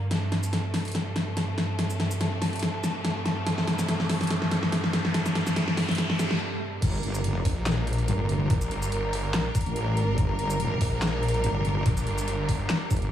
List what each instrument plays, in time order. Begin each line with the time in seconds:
Already playing: string section G2
0.11 string section C3 A3, snare, closed hi-hat, riser
0.32 snare, closed hi-hat
0.43 shaker
0.53 snare, closed hi-hat
0.74 snare, open hi-hat
0.85 closed hi-hat
0.88 closed hi-hat
0.92 snare, closed hi-hat
0.95 closed hi-hat
1.16 snare, closed hi-hat
1.37 snare, closed hi-hat
1.58 snare, closed hi-hat
1.79 snare, closed hi-hat
1.90 shaker
2.00 snare, closed hi-hat
2.11 shaker
2.21 snare, closed hi-hat
2.42 snare, open hi-hat
2.53 closed hi-hat
2.56 closed hi-hat
2.59 snare, closed hi-hat
2.63 closed hi-hat
2.84 snare, closed hi-hat, shaker
3.05 snare, closed hi-hat
3.26 snare, closed hi-hat
3.47 snare, closed hi-hat
3.58 snare
3.68 snare, closed hi-hat
3.79 snare, shaker
3.88 snare, closed hi-hat
4.00 snare
4.09 snare, open hi-hat
4.21 snare, closed hi-hat
4.23 closed hi-hat
4.27 snare, closed hi-hat
4.30 closed hi-hat
4.42 snare
4.51 snare, closed hi-hat
4.63 snare
4.72 snare, closed hi-hat
4.84 snare
4.93 snare, closed hi-hat
5.05 snare
5.14 snare, closed hi-hat
5.26 snare, shaker
5.35 snare, closed hi-hat
5.47 snare, shaker
5.56 snare, closed hi-hat
5.68 snare
5.77 snare, open hi-hat
5.89 snare, closed hi-hat
5.91 closed hi-hat
5.95 snare, closed hi-hat, swell
5.98 closed hi-hat
6.10 snare
6.19 snare, closed hi-hat, shaker
6.31 snare
6.82 wobble bass G1, string section G3 D4 A#4, kick, closed hi-hat, crash
7.03 closed hi-hat
7.15 shaker
7.24 wobble bass F#1, closed hi-hat
7.45 detuned saw bass A#1, kick, open hi-hat
7.66 snare, clap, closed hi-hat
7.87 closed hi-hat
7.93 closed hi-hat
7.98 closed hi-hat
8.08 wobble bass G1, closed hi-hat
8.29 closed hi-hat
8.50 detuned saw bass A#1, kick, closed hi-hat
8.61 shaker
8.71 detuned saw bass G1, closed hi-hat
8.82 shaker
8.92 detuned saw bass G1, closed hi-hat
9.13 open hi-hat
9.34 detuned saw bass A#1, snare, clap, closed hi-hat
9.55 kick, closed hi-hat, shaker
9.61 closed hi-hat
9.66 wobble bass A1, closed hi-hat
9.76 closed hi-hat
9.97 closed hi-hat
10.18 wobble bass G1, kick, closed hi-hat
10.39 closed hi-hat
10.50 shaker
10.60 closed hi-hat
10.81 detuned saw bass A#1, kick, open hi-hat
11.02 snare, clap, closed hi-hat
11.23 closed hi-hat
11.28 closed hi-hat
11.34 closed hi-hat
11.44 wobble bass G1, closed hi-hat
11.65 closed hi-hat
11.86 detuned saw bass A#1, kick, closed hi-hat
11.97 shaker
12.07 detuned saw bass G1, closed hi-hat
12.18 shaker
12.28 detuned saw bass G1, closed hi-hat
12.49 kick, open hi-hat
12.70 snare, clap, closed hi-hat
12.91 wobble bass G1, kick, closed hi-hat, shaker
12.96 closed hi-hat
13.02 closed hi-hat